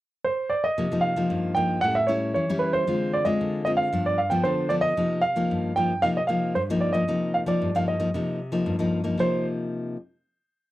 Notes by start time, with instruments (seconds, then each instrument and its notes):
0.24 grand piano C5
0.50 grand piano D5
0.64 grand piano D#5
0.78 nylon-string guitar C3 F3 A#3 D#4
0.92 nylon-string guitar F3 A#3 D#4
1.01 grand piano F5
1.16 nylon-string guitar F3 A#3 D#4
1.30 nylon-string guitar G2
1.55 nylon-string guitar F3 A#3 D#4, grand piano G5
1.81 nylon-string guitar A2 G3 C#4 E4, grand piano F#5
1.95 grand piano E5
2.07 nylon-string guitar G3 C#4 E4, grand piano C#5
2.34 nylon-string guitar E3, grand piano C#5
2.49 nylon-string guitar G3 C#4 E4
2.59 grand piano B4
2.73 grand piano C5
2.87 nylon-string guitar D3 G#3 C4 F4
3.13 grand piano D5
3.25 nylon-string guitar G#3 C4 F4, grand piano D#5
3.41 nylon-string guitar D3
3.65 nylon-string guitar G#3 C4 F4, grand piano D#5
3.77 grand piano F5
3.92 nylon-string guitar G2 F3 B3 D4
4.06 grand piano D5
4.18 grand piano F5
4.30 nylon-string guitar F3 B3 D4, grand piano G5
4.43 nylon-string guitar D3, grand piano C5
4.69 nylon-string guitar F3 B3 D4, grand piano D5
4.81 grand piano D#5
4.97 nylon-string guitar C3 F3 A#3 D#4
5.21 grand piano F5
5.36 nylon-string guitar F3 A#3 D#4
5.51 nylon-string guitar G2
5.76 nylon-string guitar F3 A#3 D#4, grand piano G5
6.02 nylon-string guitar C3 F3 A#3 D#4, grand piano F5
6.17 grand piano D#5
6.27 nylon-string guitar F3 A#3 D#4, grand piano F5
6.55 nylon-string guitar G2, grand piano C5
6.70 nylon-string guitar F3 A#3 D#4
6.81 grand piano D5
6.93 nylon-string guitar F3 A#3 D#4, grand piano D#5
7.08 nylon-string guitar C3 F3 A#3 D#4
7.34 grand piano F5
7.46 nylon-string guitar F3 A#3 D#4, grand piano D5
7.62 nylon-string guitar G2
7.75 nylon-string guitar F3 A#3 D#4, grand piano F5
7.88 grand piano D#5
8.00 nylon-string guitar F3 A#3 D#4
8.14 nylon-string guitar C3 F3 A#3 D#4
8.52 nylon-string guitar F3 A#3 D#4
8.66 nylon-string guitar G2
8.79 nylon-string guitar F3 A#3 D#4
9.04 nylon-string guitar F3 A#3 D#4
9.18 nylon-string guitar C3 F3 A#3 D#4, grand piano C5